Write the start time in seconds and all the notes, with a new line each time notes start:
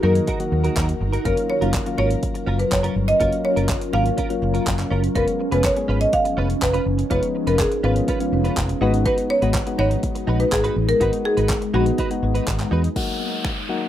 Already playing: D#3 D#4 F#4 A#4
0.03 F#2 D#3 F#3 A#3 D#4 F#4 A#4
0.15 closed hi-hat
0.27 D#4 F#4 A#4, kick, closed hi-hat
0.40 D#3 F#3 A#3 F#4, muted clean electric guitar stroke, closed hi-hat
0.52 D#2, muted clean electric guitar stroke
0.64 D#4 F#4 A#4, closed hi-hat
0.76 D#2 D#4 F#4 A#4, kick, clap, closed hi-hat
0.88 muted clean electric guitar stroke, closed hi-hat
1.00 G1, muted clean electric guitar stroke
1.13 D#4 F#4 A#4, closed hi-hat
1.25 F#1 F#3 A#3 C#4 F4 A#4, kick, closed hi-hat
1.37 muted clean electric guitar stroke, closed hi-hat
1.49 C#5, muted clean electric guitar stroke
1.61 F#1 F#3 A#3 C#4 F4 A#4, closed hi-hat
1.74 muted clean electric guitar stroke, kick, clap, closed hi-hat
1.86 F#3 A#3 C#4 F4, muted clean electric guitar stroke, closed hi-hat
1.98 G#1 C#4 F4 A#4 C#5
2.10 muted clean electric guitar stroke, closed hi-hat
2.23 kick, closed hi-hat
2.35 muted clean electric guitar stroke, closed hi-hat
2.46 F#1 C#4 F4 A#4
2.59 B4, muted clean electric guitar stroke, closed hi-hat
2.71 F#1 C#5, muted clean electric guitar stroke, kick, clap, closed hi-hat
2.83 C#4 F4 A#4, closed hi-hat
2.96 G1
3.08 D#5, muted clean electric guitar stroke, closed hi-hat
3.20 F#1 F#3 A#3 C#4 F4 A#4, kick, closed hi-hat
3.32 muted clean electric guitar stroke, closed hi-hat
3.44 C#5, muted clean electric guitar stroke
3.56 F#1 C#4 F4 A#4, closed hi-hat
3.69 muted clean electric guitar stroke, kick, clap, closed hi-hat
3.81 muted clean electric guitar stroke, closed hi-hat
3.93 G#1 F#3 A#3 C#4 F4 A#4 F5
4.05 muted clean electric guitar stroke, closed hi-hat
4.17 C#4 F4 A#4, kick, closed hi-hat
4.30 F#3 A#3 C#4 F4, muted clean electric guitar stroke, closed hi-hat
4.42 F#1, muted clean electric guitar stroke
4.54 C#4 F4 A#4, closed hi-hat
4.67 F#1, kick, clap, closed hi-hat
4.79 muted clean electric guitar stroke, clap, closed hi-hat
4.91 F#1 C#4 F4 A#4
5.03 muted clean electric guitar stroke, closed hi-hat
5.15 F1 F3 G#3 B3 C#4 D#4 F4 A#4 B4, kick, closed hi-hat
5.27 muted clean electric guitar stroke, closed hi-hat
5.40 muted clean electric guitar stroke
5.52 F1 G#3 B3 C#4 F4 G#4 B4, closed hi-hat
5.64 C#5, muted clean electric guitar stroke, kick, clap, closed hi-hat
5.76 G#3 B3 C#4 G#4, muted clean electric guitar stroke, closed hi-hat
5.88 G#1 C#4 F4 B4
6.00 D#5, muted clean electric guitar stroke, closed hi-hat
6.13 F5, kick, closed hi-hat
6.25 muted clean electric guitar stroke, closed hi-hat
6.37 F1 C#4 F4 B4
6.49 muted clean electric guitar stroke, closed hi-hat
6.61 F1 B4, muted clean electric guitar stroke, kick, clap, closed hi-hat
6.74 C#4 F4 B4, closed hi-hat
6.86 F#1, muted clean electric guitar stroke
6.98 muted clean electric guitar stroke, closed hi-hat
7.10 F1 G#3 B3 C#4 D#4 F4 B4, kick, closed hi-hat
7.23 muted clean electric guitar stroke, closed hi-hat
7.35 muted clean electric guitar stroke
7.47 F1 C#4 F4 A#4 B4, closed hi-hat
7.59 G#4, muted clean electric guitar stroke, kick, clap, closed hi-hat
7.71 muted clean electric guitar stroke, closed hi-hat
7.83 G#1 G#3 B3 C#4 F4 B4
7.96 muted clean electric guitar stroke, closed hi-hat
8.08 C#4 F4 B4, kick, closed hi-hat
8.20 G#3 B3 C#4 F4, muted clean electric guitar stroke, closed hi-hat
8.32 F1, muted clean electric guitar stroke
8.44 C#4 F4 B4, closed hi-hat
8.57 F1, kick, clap, closed hi-hat
8.69 muted clean electric guitar stroke, closed hi-hat
8.81 G#1 G#3 B3 D#4 F#4 B4
8.93 muted clean electric guitar stroke, closed hi-hat
9.05 D#4 F#4 B4, kick, closed hi-hat
9.18 muted clean electric guitar stroke, closed hi-hat
9.30 C#5, muted clean electric guitar stroke
9.42 G#1 G#3 B3 D#4 F#4 B4, closed hi-hat
9.54 muted clean electric guitar stroke, kick, clap, closed hi-hat
9.66 G#3 B3 D#4 F#4, muted clean electric guitar stroke, closed hi-hat
9.78 G#1 D#4 F#4 B4 C#5
9.91 muted clean electric guitar stroke, closed hi-hat
10.03 kick, closed hi-hat
10.15 muted clean electric guitar stroke, closed hi-hat
10.27 A#1 D#4 F#4 B4
10.40 B4, muted clean electric guitar stroke, closed hi-hat
10.52 G#1 G#4, muted clean electric guitar stroke, kick, clap, closed hi-hat
10.64 D#4 F#4 B4, closed hi-hat
10.76 A1 G#4, muted clean electric guitar stroke
10.88 A#4, muted clean electric guitar stroke, closed hi-hat
11.00 G#1 G#3 B3 D#4 F#4 B4, kick, closed hi-hat
11.13 muted clean electric guitar stroke, closed hi-hat
11.25 G#4, muted clean electric guitar stroke
11.37 G#1 D#4 F#4 B4, closed hi-hat
11.49 muted clean electric guitar stroke, kick, clap, closed hi-hat
11.62 muted clean electric guitar stroke, closed hi-hat
11.74 A#1 G#3 B3 D#4 F#4 B4
11.86 muted clean electric guitar stroke, closed hi-hat
11.98 D#4 F#4 B4, kick, closed hi-hat
12.10 G#3 B3 D#4 F#4, muted clean electric guitar stroke, closed hi-hat
12.23 G#1, muted clean electric guitar stroke
12.35 D#4 F#4 B4, closed hi-hat
12.47 G#1, kick, clap, closed hi-hat
12.59 muted clean electric guitar stroke, clap, closed hi-hat
12.71 E2 D#4 F#4 B4
12.84 muted clean electric guitar stroke, closed hi-hat
12.96 D#2 D#3 F#3 A#3 D#4 F#4 A#4, kick, crash, downlifter
13.45 finger snap, kick
13.69 F#3 A#3 D#4 F#4